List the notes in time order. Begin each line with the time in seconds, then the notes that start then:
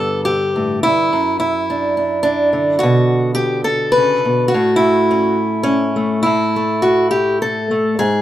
Already playing: G2 D3 B3 A4
0.25 G4
0.56 A2
0.83 G2 E4
1.13 F#2
1.40 E4
1.70 D4
1.97 D4
2.23 D4
2.53 D3
2.79 F#4
2.83 B2
3.35 G4
3.64 A4
3.92 B4
3.97 C#3
4.25 B2
4.48 F#4
4.54 A2
4.76 E4
5.11 C#4
5.63 C#4
5.96 A3
6.23 A2 E4
6.56 A3
6.82 F#4
7.11 G4
7.42 A4
7.71 A3
7.99 G#2 G#4